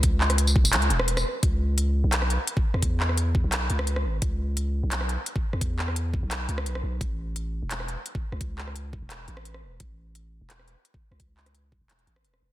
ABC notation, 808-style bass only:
X:1
M:4/4
L:1/16
Q:1/4=172
K:C#m
V:1 name="808-style bass" clef=bass
C,,6- C,, E,,, C,,2 E,,,4 z2 | C,,6- C,, B,,,4 z4 E,,- | E,,6- E,, B,,,3 C,,4 G,,,2 | C,,6- C,, B,,,4 z4 E,,- |
E,,6- E,, B,,,3 C,,2 B,,,2 B,,,2 | A,,,6- A,,, E,,,4 z4 C,,- | C,,6- C,, E,,,3 A,,,4 E,,,2 | A,,,6- A,,, E,,,4 z4 C,,- |
C,,6- C,, E,,,3 A,,,2 E,,,2 E,,,2 |]